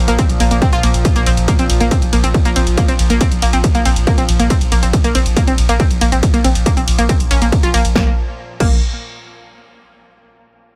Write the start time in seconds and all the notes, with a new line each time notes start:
Already playing: A#2 F3
0.08 A#1 A#3, closed hi-hat, ride
0.19 C4, kick, closed hi-hat, ride
0.29 A#1, closed hi-hat, ride
0.40 A#1 A#3, open hi-hat, ride
0.51 A#1 A#3, closed hi-hat, ride
0.62 C4, kick, closed hi-hat, ride
0.73 A#1 F4, closed hi-hat, ride
0.83 A#1 A#3, open hi-hat, ride
0.94 A#1, closed hi-hat, ride
1.05 kick, closed hi-hat, ride
1.16 A#1 A#3, closed hi-hat, ride
1.26 A#1 C4, open hi-hat, ride
1.37 A#1, closed hi-hat, ride
1.48 A#3, kick, closed hi-hat, ride
1.59 A#1 C4, closed hi-hat, ride
1.70 A#1, open hi-hat, ride
1.80 A#1 A#3, closed hi-hat, ride
1.91 C4, kick, closed hi-hat, ride
2.02 A#1, closed hi-hat, ride
2.13 A#1 A#3, open hi-hat, ride
2.24 A#1 C4, closed hi-hat, ride
2.34 kick, closed hi-hat, ride
2.45 A#1 A#3, closed hi-hat, ride
2.56 A#1 C4, open hi-hat, ride
2.67 A#1, closed hi-hat, ride
2.78 A#3, kick, closed hi-hat, ride
2.88 A#1 C4, closed hi-hat, ride
2.99 A#1, open hi-hat, ride
3.10 A#1 A#3, closed hi-hat, ride
3.21 C4, kick, closed hi-hat, ride
3.32 A#1, closed hi-hat, ride
3.42 A#1 A#3, open hi-hat, ride
3.53 A#1 C4, closed hi-hat, ride
3.64 kick, closed hi-hat, ride
3.75 A#1 A#3, closed hi-hat, ride
3.85 A#1 C4, open hi-hat, ride
3.96 A#1, closed hi-hat, ride
4.07 A#3, kick, closed hi-hat, ride
4.18 A#1 C4, closed hi-hat, ride
4.29 A#1, open hi-hat, ride
4.40 A#1 A#3, closed hi-hat, ride
4.50 C4, kick, closed hi-hat, ride
4.61 A#1, closed hi-hat, ride
4.72 A#1 A#3, open hi-hat, ride
4.83 A#1 C4, closed hi-hat, ride
4.93 kick, closed hi-hat, ride
5.04 A#1 A#3, closed hi-hat, ride
5.15 A#1 C4, open hi-hat, ride
5.26 A#1, closed hi-hat, ride
5.37 A#3, kick, closed hi-hat, ride
5.47 A#1 C4, closed hi-hat, ride
5.58 A#1, open hi-hat, ride
5.69 A#1 A#3, closed hi-hat, ride
5.80 C4, kick, closed hi-hat, ride
5.91 A#1, closed hi-hat, ride
6.01 A#1 A#3, open hi-hat, ride
6.12 A#1 C4, closed hi-hat, ride
6.23 kick, closed hi-hat, ride
6.34 A#1 A#3, closed hi-hat, ride
6.44 A#1 C4, open hi-hat, ride
6.55 A#1, closed hi-hat, ride
6.66 A#3, kick, closed hi-hat, ride
6.77 A#1 C4, closed hi-hat, ride
6.88 A#1, open hi-hat, ride
6.99 A#1 A#3, closed hi-hat, ride
7.09 C4, kick, closed hi-hat, ride
7.20 A#1, closed hi-hat, ride
7.31 A#1 C#4, open hi-hat, ride
7.42 A#1 A#3, closed hi-hat, ride
7.52 kick, closed hi-hat, ride
7.63 A#1 F4, closed hi-hat, ride
7.74 A#1 A#3, open hi-hat, ride
7.85 A#1, closed hi-hat, ride
7.96 A#1 A#3, kick, snare
8.60 A#1 A#3, kick, crash